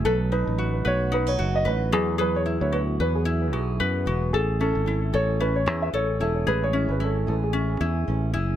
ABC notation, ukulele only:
X:1
M:4/4
L:1/8
Q:"Swing 16ths" 1/4=112
K:A
V:1 name="Ukulele"
[AB] ^D F B D F B G | [GB] E F B E F B F | A C E A C E A E | G C E2 C E2 E |]